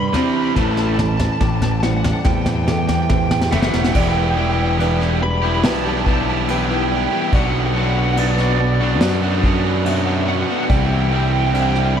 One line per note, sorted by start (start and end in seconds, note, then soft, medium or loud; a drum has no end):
0.00 0.14 G2 medium
0.00 0.59 G3 medium
0.00 0.56 D4 medium
0.00 0.59 G4 medium
0.00 0.07 B5 medium
0.08 0.14 B5 medium
0.13 0.53 C3 loud
0.13 0.50 C3 loud
0.13 3.52 E3 medium
0.13 0.53 G3 medium
0.13 0.54 C4 loud
0.13 0.99 C5 medium
0.13 0.22 B5 loud
0.13 snare medium
0.13 floor tom medium
0.22 0.29 B5 medium
0.30 0.37 B5 medium
0.37 0.44 B5 medium
0.45 0.52 B5 medium
0.56 1.28 A1 loud
0.56 0.96 A2 medium
0.56 2.68 A2 medium
0.56 0.96 E3 medium
0.56 0.96 A3 medium
0.56 0.63 A5 medium
0.56 kick loud
0.56 snare medium
0.56 floor tom medium
0.64 0.71 A5 medium
0.71 0.79 A5 medium
0.77 0.86 A5 medium
0.77 snare medium
0.86 0.94 A5 medium
0.94 1.00 A5 medium
0.98 1.37 A2 medium
0.98 1.37 E3 medium
0.98 1.84 A4 medium
0.98 1.08 A5 medium
0.98 snare medium
0.98 floor tom medium
0.98 mid tom medium
1.09 1.17 A5 medium
1.17 1.25 A5 medium
1.17 snare medium
1.17 floor tom medium
1.25 1.32 A5 medium
1.32 1.40 A5 medium
1.40 2.12 A1 loud
1.40 1.79 A2 medium
1.40 1.79 E3 medium
1.40 2.67 G4 medium
1.40 1.48 A5 medium
1.40 kick loud
1.40 snare medium
1.49 1.56 A5 medium
1.56 1.63 A5 medium
1.62 1.71 A5 medium
1.62 snare medium
1.62 floor tom medium
1.62 mid tom medium
1.71 1.79 A5 medium
1.80 2.21 A2 medium
1.80 2.22 E3 medium
1.80 3.95 G3 medium
1.80 1.90 F#5 medium
1.80 1.82 A5 medium
1.80 snare loud
1.84 2.68 C5 medium
1.90 1.96 F#5 medium
1.96 2.04 F#5 medium
2.04 2.12 F#5 medium
2.04 snare loud
2.04 floor tom medium
2.12 2.19 F#5 medium
2.19 2.25 F#5 medium
2.25 3.52 E2 medium
2.25 2.64 A2 medium
2.25 2.64 E3 medium
2.25 3.10 C4 medium
2.25 2.33 G5 medium
2.25 kick loud
2.25 snare loud
2.25 floor tom loud
2.34 2.41 G5 medium
2.42 2.47 G5 medium
2.46 2.55 G5 medium
2.46 snare loud
2.46 floor tom medium
2.55 2.63 G5 medium
2.64 3.06 A2 medium
2.64 3.06 E3 medium
2.64 2.71 G5 medium
2.64 snare loud
2.64 mid tom medium
2.68 3.95 G4 medium
2.68 3.53 A4 medium
2.68 2.78 G5 medium
2.79 2.86 G5 medium
2.87 2.94 G5 medium
2.87 snare loud
2.87 floor tom medium
2.94 3.02 G5 medium
3.02 3.10 G5 medium
3.09 3.48 A2 medium
3.09 3.48 E3 medium
3.09 3.95 C4 medium
3.09 3.17 G5 medium
3.09 kick loud
3.09 snare loud
3.09 mid tom medium
3.17 3.25 G5 medium
3.26 3.31 G5 medium
3.31 3.40 G5 medium
3.31 snare loud
3.31 floor tom medium
3.41 3.49 G5 medium
3.41 snare loud
3.51 3.72 F#1 medium
3.51 3.92 A2 medium
3.51 3.92 E3 loud
3.51 3.95 E3 medium
3.51 3.92 A3 loud
3.51 3.60 E5 medium
3.51 3.96 E5 medium
3.51 3.58 F#5 loud
3.51 snare loud
3.51 floor tom medium
3.58 3.67 E5 medium
3.58 3.65 F#5 medium
3.62 3.72 F#5 medium
3.62 snare loud
3.68 3.75 E5 medium
3.73 3.93 E1 medium
3.73 3.83 E5 medium
3.73 3.80 F#5 medium
3.73 snare loud
3.82 3.92 E5 medium
3.82 3.88 F#5 medium
3.82 snare loud
3.88 3.93 F#5 medium
3.93 5.64 E1 loud
3.93 6.06 E2 medium
3.93 4.34 E3 medium
3.93 4.36 B3 medium
3.93 4.36 E4 loud
3.93 4.37 G4 loud
3.93 4.79 D5 loud
3.93 4.00 G5 loud
3.93 kick loud
3.93 crash loud
3.93 crash medium
4.01 4.08 G5 medium
4.09 4.15 G5 loud
4.15 4.22 G5 medium
4.23 4.30 G5 loud
4.30 4.37 G5 medium
4.35 4.77 E3 medium
4.35 5.20 G3 medium
4.35 4.78 B3 medium
4.35 4.79 E4 medium
4.35 4.80 G4 medium
4.35 4.45 G5 loud
4.46 4.52 G5 medium
4.52 4.59 G5 loud
4.60 4.66 G5 medium
4.67 4.74 G5 medium
4.78 5.21 E3 medium
4.78 5.02 B3 loud
4.78 6.06 D4 medium
4.78 5.00 E4 loud
4.78 4.98 G4 loud
4.78 5.63 B4 medium
4.78 crash medium
4.99 5.22 B3 medium
4.99 5.21 E4 medium
4.99 5.21 G4 medium
4.99 snare soft
5.22 6.90 G3 medium
5.22 5.30 B5 loud
5.22 muted distorted electric guitar stroke soft
5.22 muted overdriven electric guitar stroke soft
5.30 5.37 B5 medium
5.38 5.45 B5 loud
5.42 5.85 B3 medium
5.42 5.84 E4 medium
5.42 5.82 G4 medium
5.47 5.53 B5 medium
5.53 5.61 B5 medium
5.64 7.06 B1 loud
5.64 6.48 E3 medium
5.64 6.47 B4 medium
5.64 5.73 A5 loud
5.64 snare loud
5.64 crash medium
5.74 5.81 A5 medium
5.81 6.07 G4 medium
5.81 5.88 A5 loud
5.85 6.05 B3 medium
5.85 6.06 E4 medium
5.85 5.97 A5 medium
5.97 6.04 A5 loud
6.05 6.47 E3 medium
6.05 6.29 B3 medium
6.05 8.17 D4 medium
6.05 6.28 E4 medium
6.05 6.26 G4 medium
6.05 6.13 A5 medium
6.05 kick loud
6.13 6.21 A5 loud
6.21 6.29 A5 medium
6.27 6.48 B3 medium
6.27 6.49 E4 medium
6.27 6.50 G4 medium
6.27 6.36 A5 loud
6.36 6.44 A5 medium
6.48 6.89 E3 loud
6.48 7.33 E3 medium
6.48 6.70 B3 medium
6.48 6.69 E4 loud
6.48 6.68 G4 loud
6.48 7.33 B4 loud
6.48 6.58 G5 loud
6.48 crash medium
6.58 6.65 G5 medium
6.65 6.92 G4 medium
6.65 6.73 G5 medium
6.70 6.90 B3 medium
6.70 6.91 E4 medium
6.70 6.81 G5 medium
6.81 6.88 G5 medium
6.89 7.30 E3 medium
6.89 7.33 G3 medium
6.89 7.30 B3 medium
6.89 7.31 E4 medium
6.89 6.96 G5 medium
6.93 7.31 G4 medium
6.93 7.03 G5 loud
7.04 7.12 G5 medium
7.11 7.31 B3 medium
7.11 7.31 E4 medium
7.11 7.30 G4 medium
7.11 7.20 G5 medium
7.21 7.28 G5 medium
7.28 8.15 B2 loud
7.28 7.35 G5 medium
7.32 9.01 B1 loud
7.32 9.44 B2 medium
7.32 7.73 F#3 loud
7.32 7.74 B3 loud
7.32 7.76 D4 loud
7.32 7.76 F#4 loud
7.32 8.17 D5 medium
7.32 7.43 F#5 loud
7.32 kick loud
7.32 crash medium
7.43 7.50 F#5 medium
7.51 7.58 F#5 loud
7.59 7.66 F#5 medium
7.66 7.73 F#5 loud
7.74 8.16 F#3 medium
7.74 8.58 B3 medium
7.74 8.17 B3 medium
7.74 8.19 D4 medium
7.74 8.18 F#4 medium
7.74 7.82 F#5 medium
7.83 7.89 F#5 loud
7.90 7.97 F#5 medium
7.97 8.05 F#5 medium
8.05 8.12 F#5 medium
8.13 8.20 F#5 medium
8.17 8.80 B2 loud
8.17 8.58 F#3 loud
8.17 8.40 B3 loud
8.17 9.42 D4 medium
8.17 8.39 D4 loud
8.17 8.37 F#4 loud
8.17 9.01 B4 medium
8.17 8.26 D5 medium
8.17 crash medium
8.27 8.34 D5 medium
8.35 8.59 F#4 medium
8.35 8.41 D5 medium
8.35 snare soft
8.39 8.59 B3 medium
8.39 8.60 D4 medium
8.39 8.50 D5 medium
8.50 8.57 D5 medium
8.58 10.26 B3 medium
8.58 8.66 D5 medium
8.58 muted distorted electric guitar stroke soft
8.58 muted overdriven electric guitar stroke soft
8.67 8.74 D5 medium
8.74 8.82 D5 medium
8.80 9.23 B3 medium
8.80 9.22 D4 medium
8.80 9.21 F#4 medium
8.80 8.89 D5 medium
8.90 8.98 D5 medium
9.01 10.43 F#2 loud
9.01 9.84 F#3 medium
9.01 9.85 D5 loud
9.01 snare loud
9.01 crash medium
9.22 9.43 B3 medium
9.22 9.43 D4 medium
9.22 9.44 F#4 medium
9.43 9.84 F#3 medium
9.43 9.66 B3 medium
9.43 10.70 D4 medium
9.43 9.64 D4 medium
9.43 9.63 F#4 medium
9.43 kick loud
9.64 9.85 B3 medium
9.64 9.85 D4 medium
9.64 9.86 F#4 medium
9.84 10.48 B2 loud
9.84 10.25 F#3 loud
9.84 10.70 F#3 medium
9.84 10.08 B3 loud
9.84 10.06 D4 loud
9.84 10.05 F#4 loud
9.84 10.69 E5 medium
9.84 crash medium
10.06 10.27 B3 medium
10.06 10.27 D4 medium
10.06 10.28 F#4 medium
10.27 10.67 F#3 medium
10.27 10.70 B3 medium
10.27 10.67 B3 medium
10.27 10.68 D4 medium
10.27 10.68 F#4 medium
10.27 10.35 F#5 medium
10.36 10.42 F#5 medium
10.42 10.49 F#5 medium
10.48 10.68 B3 medium
10.48 10.68 D4 medium
10.48 10.67 F#4 medium
10.48 10.56 F#5 medium
10.56 10.63 F#5 medium
10.64 11.51 C3 loud
10.64 10.69 F#5 medium
10.68 12.00 C2 loud
10.68 12.00 C3 medium
10.68 11.10 E3 loud
10.68 11.11 G3 loud
10.68 11.12 C4 loud
10.68 11.13 E4 loud
10.68 11.53 D5 loud
10.68 10.77 G5 medium
10.68 kick loud
10.68 crash medium
10.78 10.85 G5 medium
10.85 10.93 G5 medium
10.93 11.00 G5 medium
11.00 11.08 G5 medium
11.08 11.53 E3 medium
11.08 11.95 G3 medium
11.08 11.54 G3 medium
11.08 11.16 G5 medium
11.12 11.54 C4 medium
11.12 11.55 E4 medium
11.12 11.23 G5 medium
11.23 11.31 G5 medium
11.31 11.39 G5 medium
11.39 11.46 G5 medium
11.46 11.54 G5 medium
11.53 12.00 C3 loud
11.53 11.95 E3 loud
11.53 11.76 G3 loud
11.53 11.75 C4 loud
11.53 12.00 D4 medium
11.53 11.73 E4 loud
11.53 12.00 C5 medium
11.53 11.61 G5 medium
11.53 crash medium
11.62 11.70 G5 medium
11.70 11.96 E4 medium
11.70 11.75 G5 medium
11.75 11.95 G3 medium
11.75 11.96 C4 medium
11.75 11.84 G5 medium
11.75 snare soft
11.85 11.93 G5 medium
11.95 12.00 G3 medium
11.95 muted overdriven electric guitar stroke soft
11.95 muted distorted electric guitar stroke soft